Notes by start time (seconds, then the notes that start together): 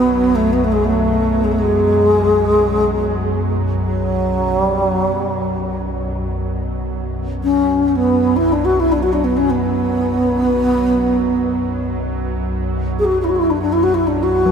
Already playing: B1 F#2 B3
0.35 A3
0.53 B3
0.64 A3
0.72 G#3
0.84 A3
1.44 G#3
1.52 A3
1.59 G#3
3.82 F#3
4.63 G3
4.86 F#3
5.09 G3
5.32 F#3
7.31 B1 F#2
7.43 C#4
7.88 C#4
7.96 B3
8.36 E4
8.52 D4
8.65 F#4
8.80 E4
8.92 D4
9.03 F#4
9.13 D4
9.24 B3
9.37 C#4
9.50 B3
12.99 G#4
13.05 F#4
13.21 E4 F#4
13.29 F#4
13.36 E4
13.50 D4
13.61 D4
13.73 E4
13.83 F#4
13.94 E4
14.07 D4
14.23 F#4
14.46 F#3